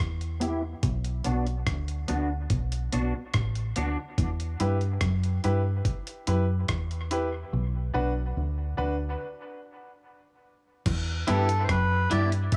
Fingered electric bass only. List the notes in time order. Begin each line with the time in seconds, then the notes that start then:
0.00 E2
0.83 B1
1.27 B1
1.67 D2
2.10 D2
2.51 B1
2.94 B1
3.35 A1
3.78 D2
4.19 E2
4.60 G2
5.02 F#2
5.45 G2
6.28 F#2
6.70 E2
7.53 B1
7.95 B1
8.37 D2
8.79 D2
10.87 E2
11.29 G2
11.70 F#2
12.12 G2